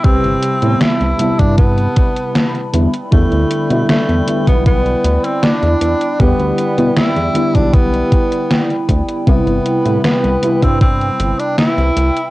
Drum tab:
HH |xxxxxxxxxxxxxxxx|xxxxxxxxxxxxxxxx|xxxxxxxxxxxxxxxx|xxxxxxxxxxxxxxxx|
SD |----o-------o---|----o-------o---|----o-------o---|----o-------o---|
BD |o------oo-o-----|o------oo-------|o------oo-o---o-|o------oo-------|